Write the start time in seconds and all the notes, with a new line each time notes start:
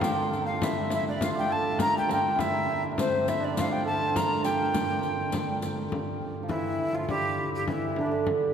Already playing: G2 D3 C4 D4 F4 A4
0.00 G4 G5, riq, frame drum
0.33 riq
0.45 F5
0.62 E4 E5, riq, frame drum
0.90 E4 E5, riq, frame drum
1.08 D4 D5
1.20 G2 D3 F4 F5, riq, frame drum
1.35 G4 G5
1.50 A4 A5
1.79 A#4 A#5, riq, frame drum
1.97 G5
2.08 G4 G5, riq, frame drum
2.36 E4 E5, frame drum
2.40 riq
2.91 D4
2.98 C4 C5, riq, frame drum
3.28 E4 E5, riq, frame drum
3.40 D4 D5
3.56 F4 F5, riq, frame drum
3.71 G4 G5
3.85 A4 A5
4.15 A#4 A#5, riq, frame drum
4.43 G4 G5, riq, frame drum
4.74 riq, frame drum
5.03 riq
5.32 riq, frame drum
5.62 riq, frame drum
5.91 G2 D3, frame drum
6.22 frame drum
6.43 F3
6.48 E3 E4, frame drum
6.93 F3 F4
7.09 G3 G4, frame drum
7.39 frame drum
7.55 G4
7.68 E3 E4, frame drum
7.96 D3 D4, frame drum
8.06 D3
8.12 D3
8.27 frame drum